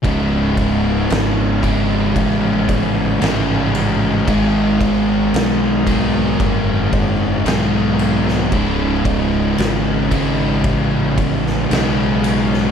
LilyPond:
<<
  \new Staff \with { instrumentName = "Distorted electric guitar" } { \clef bass \time 4/4 \key cis \minor \tempo 4 = 56 <cis, gis, cis gis e'>4. <cis, gis, cis gis e'>4. <cis, gis, cis gis e'>4 | <gis, dis gis b dis' gis'>4. <gis, dis gis b dis' gis'>4. <gis, dis gis b dis' gis'>4 | <cis, gis, cis gis e'>4. <cis, gis, cis gis e'>4. <cis, gis, cis gis e'>4 | }
  \new Staff \with { instrumentName = "Distorted electric guitar" } { \clef bass \time 4/4 \key cis \minor <cis, gis, cis>2~ <cis, gis, cis>8 <cis, gis, cis>8 <cis, gis, cis>4 | <gis, dis gis>2~ <gis, dis gis>8 <gis, dis gis>8 <gis, dis gis>4 | <cis, gis, cis>2~ <cis, gis, cis>8 <cis, gis, cis>8 <cis, gis, cis>4 | }
  \new Staff \with { instrumentName = "Distorted electric guitar" } { \clef bass \time 4/4 \key cis \minor <cis, gis, cis>1 | <gis, dis gis>1 | <cis, gis, cis>1 | }
  \new Staff \with { instrumentName = "Fingered electric bass" } { \clef bass \time 4/4 \key cis \minor cis,,4 gis,,4 a,,4 a,,4 | gis,,4 b,,4 fis,,4 b,,4 | cis,,4 gis,,4 a,,4 b,,4 | }
  \new DrumStaff \with { instrumentName = "Drums" } \drummode { \time 4/4 <bd cymr>8 <bd cymr>8 <cymr sn>8 <bd cymr>8 <bd cymr>8 <bd cymr>8 <cymr sn>8 cymr8 | <bd cymr>8 <bd cymr>8 <cymr sn>8 <bd cymr>8 <bd cymr>8 <bd cymr>8 <cymr sn>8 cymr16 sn16 | <bd cymr>8 <bd cymr>8 <cymr sn>8 <bd cymr>8 <bd cymr>8 <bd cymr>16 sn16 <cymr sn>8 cymr16 sn16 | }
>>